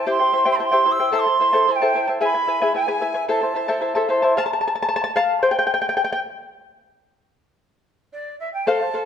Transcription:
0.07 charango E4 G4 C5 E5 G5, quena C6
0.20 charango E4 C5 G5
0.33 charango E4 C5 E5 G5
0.45 charango E4 G4 C5 E5 G5
0.50 quena C6
0.55 charango E5, quena A5
0.60 charango E4 C5 G5
0.65 quena C6
0.72 charango E4 G4 C5 E5 G5
0.85 charango E4 C5 E5 G5
0.91 quena E6
1.00 charango E4 C5 G5
1.12 charango E4 A4 C5 E5 A5
1.19 quena C6
1.27 charango E4 C5 A5
1.40 charango E4 C5 E5 A5
1.53 charango E4 A4 C5 E5 A5
1.68 charango E4 C5 E5 A5, quena G#5
1.75 quena G5
1.82 charango E4 A4 C5 E5 A5
1.94 charango E4 C5 E5 A5
2.07 charango E4 C5 A5
2.21 charango E4 G#4 B4 E5 G#5, quena B5
2.34 charango E4 B4 G#5
2.47 charango E4 B4 E5 G#5
2.62 charango E4 G#4 B4 E5 G#5
2.74 charango E4 B4 E5 G#5, quena G#5
2.88 charango E4 G#4 B4 E5 G#5
3.01 charango E4 B4 E5 G#5
3.14 charango E4 B4 G#5
3.28 charango E4 A4 C5 E5 A5, quena A5
3.41 charango E4 C5 A5
3.55 charango E4 C5 E5 A5
3.68 charango E4 A4 C5 E5 A5
3.81 charango E4 C5 E5 A5
3.95 charango E4 A4 C5 E5 A5
4.09 charango E4 C5 E5 A5
4.22 charango E4 C5 A5
4.37 charango F5 A5
4.46 charango A5
4.53 charango A5
4.61 charango A5
4.68 charango A5
4.75 charango A5
4.83 charango A5
4.89 charango A5
4.96 charango A5
5.04 charango A5
5.16 charango F5 A5
5.43 charango C5 G5
5.51 charango G5
5.59 charango G5
5.67 charango G5
5.74 charango G5
5.82 charango G5
5.89 charango G5
5.97 charango G5
6.04 charango G5
6.13 charango G5
8.12 quena D5
8.39 quena E5
8.53 quena G5
8.66 charango A4 C5 F5, quena A5
8.81 charango C5 F5
8.94 charango A4 C5 F5

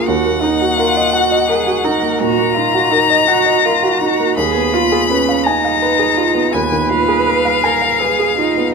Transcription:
0.06 grand piano D#2, cello F#4, violin F#5
0.26 grand piano A#3
0.42 cello D#4, grand piano D#4
0.61 grand piano F#4
0.78 cello F4, grand piano A#4
0.97 grand piano D#5
1.13 cello F#4, grand piano F#5
1.31 grand piano D#5
1.48 cello G#4, grand piano A#4
1.67 grand piano F#4
1.84 grand piano D#4, cello A#4
2.02 grand piano A#3
2.19 grand piano A#2, cello F#4, violin A#5
2.38 grand piano A#3
2.55 grand piano D#4, cello F4
2.74 grand piano F#4
2.91 cello D#4, grand piano A#4
3.10 grand piano D#5
3.27 cello F#4, grand piano F#5
3.46 grand piano D#5
3.65 cello F4, grand piano A#4
3.83 grand piano F#4
4.01 grand piano D#4, cello F#4
4.20 grand piano A#3
4.37 grand piano D#2, cello G#4, violin B5
4.54 grand piano B3
4.73 cello F4, grand piano F4
4.92 grand piano G#4
5.10 cello C#4, grand piano B4
5.29 grand piano F5
5.44 cello D#4, grand piano G#5, violin A#5
5.65 grand piano F5
5.82 grand piano B4
5.99 grand piano G#4
6.17 grand piano F4
6.34 grand piano B3
6.52 grand piano D#2, cello B4, violin G#5
6.71 grand piano D#3
6.89 grand piano F4, violin F5
7.08 grand piano G#4
7.26 grand piano B4
7.45 grand piano F5
7.64 cello A#4, grand piano G#5
7.82 grand piano F5
8.00 cello G#4, grand piano B4
8.19 grand piano G#4
8.38 cello D#4, grand piano F4
8.57 grand piano B3

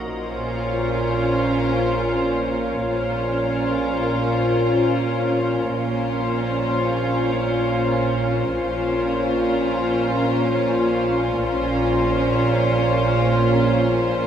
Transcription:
0.01 double bass section A#1, cello section A#2, ambient pad C#4 F4 A#4, viola section C#4, violin section F4 C5
2.88 double bass section A#1, cello section A#2, viola section C#4, ambient pad C#4 F4 A#4, violin section F4 C5
5.73 double bass section A#1, cello section A#2, ambient pad C#4 F4 A#4, viola section C#4, violin section F4 C5
8.59 double bass section A#1, cello section A#2, ambient pad C#4 F4 A#4, viola section C#4, violin section F4 C5
11.44 double bass section A#1, cello section A#2, viola section C#4, ambient pad C#4 F4 A#4, violin section F4 C5

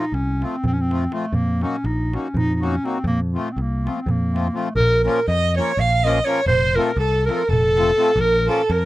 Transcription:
Already playing: clarinet D#4
0.12 picked electric bass C2, clarinet C#4, darbuka tek
0.40 accordion F3 A3 C4 F4, darbuka tek
0.44 clarinet C4
0.54 darbuka tek
0.64 picked electric bass F2, clarinet C4, darbuka dum
0.73 clarinet C#4
0.78 clarinet C4, darbuka tek
0.90 accordion F3 A3 C4 F4, darbuka tek
1.11 accordion F3 A3 C4 F4, clarinet A3, darbuka tek
1.33 picked electric bass F2, clarinet A#3, darbuka dum
1.47 darbuka tek
1.61 accordion F#3 A#3 D#4 F#4, clarinet C#4, darbuka tek
1.84 picked electric bass A#1, clarinet D#4, darbuka tek
2.12 accordion F#3 A#3 D#4 F#4, clarinet C#4, darbuka tek
2.26 darbuka tek
2.34 picked electric bass F2, clarinet D#4, darbuka dum
2.51 clarinet D#4, darbuka tek
2.60 accordion F#3 A#3 D#4 F#4, darbuka tek
2.64 clarinet C#4
2.84 accordion F#3 A#3 D#4 F#4, clarinet C4, darbuka tek
3.04 picked electric bass F2, clarinet A#3, darbuka dum
3.22 darbuka tek
3.33 accordion F3 A3 C4 F4, clarinet A3, darbuka tek
3.52 clarinet C4
3.56 picked electric bass C2, darbuka tek
3.61 clarinet A#3
3.73 darbuka tek
3.83 accordion F3 A3 C4 F4, darbuka tek
3.89 clarinet C4
3.94 clarinet A#3
3.99 clarinet C4
4.06 picked electric bass F2, darbuka dum
4.11 clarinet A#3
4.23 darbuka tek
4.32 accordion F3 A3 C4 F4, darbuka tek
4.47 darbuka tek
4.53 accordion F3 A3 C4 F4, clarinet A3
4.57 darbuka tek
4.69 darbuka tek
4.75 picked electric bass A#1, clarinet A#4, violin A#4
4.80 darbuka dum
5.04 accordion F3 A#3 C#4 F4 A#4, clarinet A#4, violin A#4, darbuka tek
5.28 picked electric bass F2, clarinet D#5, violin D#5, darbuka tek
5.57 accordion F3 A#3 C#4 F4 A#4, clarinet C#5, violin C#5, darbuka tek
5.68 darbuka tek
5.77 picked electric bass A#1, clarinet F5, darbuka dum
5.81 violin F5
6.04 accordion F3 A#3 C#4 F4 A#4, clarinet D#5, violin D#5, darbuka tek
6.24 accordion F3 A#3 C#4 F4 A#4, clarinet C#5, violin C#5, darbuka tek
6.46 picked electric bass F1, clarinet C5, violin C5, darbuka dum
6.76 accordion F3 A3 C4 F4 A4, clarinet A#4, violin A#4, darbuka tek
6.96 picked electric bass C2, violin A4, clarinet A4, darbuka tek
7.26 accordion F3 A3 C4 F4, clarinet A#4, violin A#4, darbuka tek
7.30 accordion A4
7.42 darbuka tek
7.49 picked electric bass F1, clarinet A4, violin A4, darbuka dum
7.77 accordion F3 A3 C4 F4 A4, darbuka tek
7.97 accordion F3 A3 C4 F4 A4, darbuka tek
8.16 picked electric bass A#1, violin A#4
8.20 clarinet A#4, darbuka dum
8.47 accordion F3 A#3 C#4 F4 A#4, violin A4, clarinet A4, darbuka tek
8.70 picked electric bass F2, clarinet A#4, violin A#4, darbuka tek

